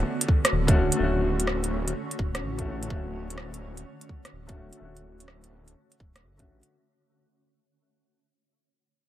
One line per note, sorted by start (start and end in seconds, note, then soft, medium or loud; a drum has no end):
0.00 0.24 D3 medium
0.00 6.72 D3 medium
0.00 0.26 A3 medium
0.00 6.72 A3 medium
0.00 0.56 B3 medium
0.00 0.27 C#4 medium
0.00 6.71 C#4 medium
0.00 0.28 F#4 medium
0.00 6.72 F#4 medium
0.21 closed hi-hat soft
0.28 kick medium
0.45 cross-stick medium
0.45 closed hi-hat soft
0.52 0.75 D1 loud
0.52 6.72 C#5 medium
0.67 0.73 D3 medium
0.67 0.74 A3 medium
0.67 0.75 C#4 medium
0.67 kick loud
0.67 closed hi-hat soft
0.71 0.95 D3 medium
0.71 0.75 F#4 medium
0.75 0.90 D1 medium
0.75 0.97 A3 medium
0.75 0.98 C#4 medium
0.75 0.99 F#4 medium
0.92 closed hi-hat soft
0.96 1.94 D1 loud
0.96 2.15 D3 medium
0.96 2.16 A3 medium
1.02 2.18 C#4 medium
1.02 2.19 F#4 medium
1.40 closed hi-hat soft
1.47 cross-stick medium
1.64 closed hi-hat soft
1.88 closed hi-hat medium
2.11 closed hi-hat soft
2.19 2.44 D1 medium
2.19 kick loud
2.35 cross-stick medium
2.35 closed hi-hat soft
2.43 2.89 A1 medium
2.58 2.64 D3 medium
2.58 2.65 A3 medium
2.58 2.65 C#4 medium
2.58 2.66 F#4 medium
2.58 kick medium
2.58 closed hi-hat soft
2.66 2.85 D3 medium
2.66 2.88 A3 medium
2.66 2.89 C#4 medium
2.66 2.90 F#4 medium
2.83 closed hi-hat soft
2.87 3.84 D1 medium
2.87 4.06 D3 medium
2.87 4.07 A3 medium
2.87 kick loud
2.92 4.08 C#4 medium
2.92 4.10 F#4 medium
3.30 closed hi-hat medium
3.38 cross-stick medium
3.54 closed hi-hat soft
3.77 closed hi-hat soft
4.01 closed hi-hat soft
4.09 kick medium
4.25 cross-stick medium
4.25 closed hi-hat soft
4.33 4.55 D1 medium
4.47 4.53 D3 medium
4.47 4.54 A3 medium
4.47 4.55 C#4 medium
4.47 kick medium
4.47 closed hi-hat soft
4.51 4.75 D3 medium
4.51 4.56 F#4 medium
4.56 4.71 D1 medium
4.56 4.78 A3 medium
4.56 4.79 C#4 medium
4.56 4.79 F#4 medium
4.73 closed hi-hat soft
4.77 5.75 D1 loud
4.77 5.96 D3 medium
4.77 5.97 A3 medium
4.82 5.98 C#4 medium
4.82 6.00 F#4 medium
4.97 closed hi-hat soft
5.20 closed hi-hat medium
5.28 cross-stick medium
5.44 closed hi-hat soft
5.68 closed hi-hat medium
5.92 closed hi-hat soft
6.00 6.25 D1 medium
6.00 kick medium
6.16 cross-stick medium
6.16 closed hi-hat soft
6.24 6.49 F#1 medium
6.37 6.68 D3 medium
6.37 6.69 A3 medium
6.37 6.69 C#4 medium
6.37 kick medium
6.37 closed hi-hat soft
6.42 6.70 F#4 medium
6.48 6.62 A1 medium
6.63 closed hi-hat soft